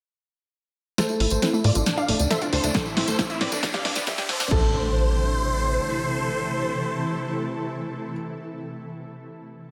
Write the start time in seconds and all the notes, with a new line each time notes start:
0.98 A2 A3 A4 C5, snare, closed hi-hat, tambourine, riser
1.09 E4, tambourine
1.20 A1 E4, open hi-hat
1.30 A1 A4 C5, closed hi-hat, tambourine
1.42 C4 E4, snare, closed hi-hat, tambourine
1.53 A3 E4, tambourine
1.64 A2 F4 A4 D5, open hi-hat
1.75 A1 D4 E4, closed hi-hat, tambourine
1.86 D4, snare, closed hi-hat, tambourine
1.97 D4 D5 F5, tambourine
2.08 D1 A3 D4, open hi-hat
2.19 D2 D4, closed hi-hat, tambourine
2.30 A4 C5 E5, snare, closed hi-hat, tambourine
2.41 D4 F4, closed hi-hat, tambourine
2.53 D2 D4 A4 C5, open hi-hat
2.64 D2 A3 D4, closed hi-hat, tambourine
2.74 A4 C5, kick, snare, closed hi-hat, tambourine
2.85 E4, tambourine
2.97 A1 C4 E4, snare, open hi-hat
3.08 A1 A3 A4 C5, closed hi-hat, tambourine
3.19 E4 A4, kick, snare, closed hi-hat, tambourine
3.30 E4, closed hi-hat, tambourine
3.41 A2 C4 B4 D5, snare, open hi-hat
3.52 A1 A3 D4, closed hi-hat, tambourine
3.63 D4, kick, snare, closed hi-hat, tambourine
3.73 G4 D5 F5, snare, tambourine
3.85 G2 D4, snare, open hi-hat
3.95 G1 B3 D4, snare, closed hi-hat, tambourine
4.07 G3 G4 E5, kick, snare, closed hi-hat, tambourine
4.18 D4 G4, snare, closed hi-hat, tambourine
4.29 G1 A4 C5, snare, open hi-hat
4.40 G1 D4, snare, tambourine
4.51 A1 C3 E3 A3 E4 A4 C5, kick, crash, impact